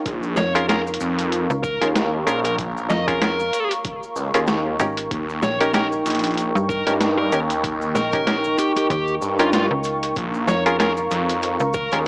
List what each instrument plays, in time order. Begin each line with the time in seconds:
Already playing: clav C#4 F4 G#4 A#4, ambient pad D#4 A#4 F5
0.05 detuned saw bass A#1, analog synth pad A#4 F5 A#5 C#6, kick, closed hi-hat, cabasa
0.23 cabasa
0.37 fm bass F2, lead electric guitar C#5, snare, cabasa
0.55 clav C#4 F4 G#4 A#4, lead electric guitar A#4, closed hi-hat, cabasa
0.69 clav C#4 F4 G#4 A#4, lead electric guitar A#4, snare, closed hi-hat, cabasa
0.87 cabasa
0.94 closed hi-hat
1.00 detuned saw bass F2, cabasa
1.19 closed hi-hat, cabasa
1.32 closed hi-hat, cabasa
1.50 fm bass C#2, cabasa
1.63 lead electric guitar A#4, kick, cabasa
1.75 ambient pad C#6
1.81 detuned saw bass D#2, clav C#4 F4 G#4 A#4, snare, closed hi-hat, cabasa
1.96 snare, closed hi-hat, cabasa
2.27 detuned saw bass A#1, clav C#4 F4 G#4 A#4, lead electric guitar A#4, closed hi-hat, cabasa
2.44 lead electric guitar A#4, closed hi-hat, cabasa
2.58 kick, closed hi-hat, cabasa
2.77 cabasa
2.90 fm bass F2, lead electric guitar D#5, snare, cabasa
3.08 clav C#4 F4 G#4 A#4, lead electric guitar A#4, kick, closed hi-hat, cabasa
3.22 clav C#4 F4 G#4 A#4, snare, closed hi-hat, cabasa
3.40 cabasa
3.53 closed hi-hat, cabasa
3.71 closed hi-hat, cabasa
3.85 kick, closed hi-hat, cabasa
4.03 cabasa
4.16 detuned saw bass C#2, cabasa
4.34 detuned saw bass D#2, clav C#4 F4 G#4 A#4, closed hi-hat, cabasa
4.47 snare, cabasa
4.80 fm bass G#1, clav C#4 D#4 G4 A#4, closed hi-hat, cabasa
4.97 closed hi-hat, cabasa
5.11 detuned saw bass D#2, ambient pad D#4, analog synth pad D#5 G5, kick, closed hi-hat, cabasa
5.29 cabasa
5.41 fm bass A#1, ambient pad A#4, lead electric guitar C#5, snare, cabasa
5.61 clav C#4 D#4 G4 A#4, lead electric guitar A#4, closed hi-hat, cabasa
5.74 clav C#4 D#4 G4 A#4, lead electric guitar A#4, snare, closed hi-hat, cabasa
5.92 cabasa
6.05 detuned saw bass A#1, closed hi-hat, cabasa
6.10 closed hi-hat
6.15 closed hi-hat
6.19 closed hi-hat
6.23 closed hi-hat, cabasa
6.27 closed hi-hat
6.31 closed hi-hat
6.34 closed hi-hat
6.37 closed hi-hat, cabasa
6.55 fm bass G2, cabasa
6.69 lead electric guitar A#4, kick, cabasa
6.86 detuned saw bass G2, clav C#4 D#4 G4 A#4, snare, closed hi-hat, cabasa
7.01 snare, closed hi-hat, cabasa
7.18 lead electric guitar A#4
7.32 detuned saw bass D#2, clav C#4 D#4 G4 A#4, closed hi-hat, cabasa
7.50 closed hi-hat, cabasa
7.64 kick, closed hi-hat, cabasa
7.82 cabasa
7.95 fm bass A#1, lead electric guitar A#4, snare, cabasa
8.12 clav C#4 D#4 G4 A#4, kick, closed hi-hat, cabasa
8.27 clav C#4 D#4 G4 A#4, snare, closed hi-hat, cabasa
8.44 cabasa
8.58 lead electric guitar G4, closed hi-hat, cabasa
8.76 lead electric guitar G4, closed hi-hat, cabasa
8.90 fm bass D#2, lead electric guitar G4, kick, closed hi-hat, cabasa
9.08 cabasa
9.21 detuned saw bass G2, cabasa
9.39 clav C#4 D#4 G4 A#4, lead electric guitar F4, closed hi-hat, cabasa
9.53 lead electric guitar F4, snare, closed hi-hat, cabasa
9.71 fm bass C#2
9.84 closed hi-hat, cabasa
10.03 closed hi-hat, cabasa
10.16 detuned saw bass A#1, analog synth pad F5 A#5, kick, closed hi-hat, cabasa
10.34 cabasa
10.47 fm bass F2, lead electric guitar C#5, snare, cabasa
10.66 clav C#4 F4 G#4 A#4, lead electric guitar A#4, closed hi-hat, cabasa
10.72 ambient pad F5
10.79 clav C#4 F4 G#4 A#4, lead electric guitar A#4, snare, closed hi-hat, cabasa
10.97 cabasa
11.11 detuned saw bass F2, closed hi-hat, cabasa
11.29 closed hi-hat, cabasa
11.42 closed hi-hat, cabasa
11.60 fm bass C#2, cabasa
11.73 lead electric guitar A#4, ambient pad C#6, kick, cabasa
11.92 detuned saw bass D#2, clav C#4 F4 G#4 A#4, snare, closed hi-hat, cabasa